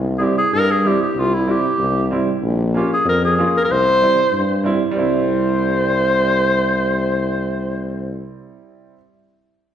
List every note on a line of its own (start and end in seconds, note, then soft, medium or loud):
0.00 0.27 C2 loud
0.18 0.36 G3 medium
0.18 0.36 C4 medium
0.18 0.37 E4 medium
0.18 0.25 G#4 medium
0.24 0.37 G4 medium
0.38 0.55 G#4 loud
0.53 0.91 G2 loud
0.53 0.72 A#4 loud
0.71 0.89 G#4 loud
0.85 1.00 G3 medium
0.85 1.01 C4 medium
0.85 1.01 E4 medium
0.85 1.01 G4 medium
1.03 1.21 G4 medium
1.15 1.53 C2 loud
1.19 1.35 F4 medium
1.34 1.52 E4 medium
1.47 1.63 G3 medium
1.47 1.63 C4 medium
1.47 1.64 E4 medium
1.51 2.12 G4 medium
1.78 2.17 C2 loud
2.11 2.27 G3 medium
2.11 2.27 C4 medium
2.11 2.27 E4 medium
2.42 2.80 A#1 loud
2.74 2.90 A#3 medium
2.74 2.90 C#4 medium
2.74 2.91 F4 medium
2.74 2.90 G4 medium
2.93 3.06 G#4 loud
3.05 3.43 F2 loud
3.05 3.22 A#4 loud
3.25 3.59 G#4 medium
3.39 3.54 A#3 medium
3.39 3.54 C#4 medium
3.39 3.54 F4 medium
3.57 3.66 G#4 medium
3.57 3.61 A#4 loud
3.65 4.07 C2 loud
3.65 3.73 A#4 loud
3.72 4.65 C5 loud
4.01 4.17 G3 medium
4.01 4.17 C4 medium
4.01 4.18 E4 medium
4.32 4.70 G2 loud
4.64 4.79 G3 medium
4.64 4.80 C4 medium
4.64 4.81 E4 medium
4.91 8.24 C2 medium
4.91 8.92 G3 medium
4.95 8.94 C4 medium
4.95 8.96 E4 medium
4.95 8.25 C5 loud